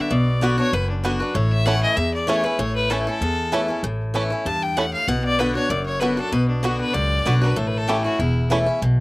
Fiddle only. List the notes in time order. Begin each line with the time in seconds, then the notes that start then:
0.01 E5
0.12 D5
0.59 C#5
0.74 B4
0.90 D4
1.05 F#4
1.20 B4
1.34 C#5
1.52 E5
1.66 F#5
1.83 D#5
1.96 E5
2.14 D5
2.28 C#5
2.45 B4
2.59 C#5
2.76 B4
2.90 A4
3.06 A4
4.46 A5
4.63 G5
4.77 F#5
4.93 F5
5.08 F#5
5.25 D5
5.39 B4
5.55 C#5
5.70 D5
5.86 C#5
6.00 B4
6.17 A4
6.32 B4
6.48 D4
6.64 F#4
6.80 B4
6.94 D5
7.42 B4
7.57 A4
7.67 B4
7.77 A4
7.88 G4
8.04 F#4
8.19 E4